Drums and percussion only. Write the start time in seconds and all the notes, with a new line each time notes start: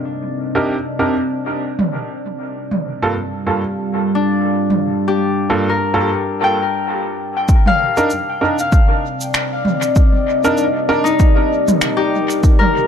1.79 mid tom
2.71 mid tom
4.70 mid tom
7.48 kick, cabasa
7.66 mid tom
7.97 cabasa
8.10 cabasa
8.59 cabasa
8.72 kick, cabasa
9.21 cabasa
9.34 finger snap, cabasa
9.65 mid tom
9.82 cabasa
9.96 kick, cabasa
10.44 cabasa
10.57 cabasa
11.06 cabasa
11.19 kick, cabasa
11.68 mid tom, cabasa
11.81 finger snap, cabasa
12.30 cabasa
12.43 kick, cabasa
12.61 mid tom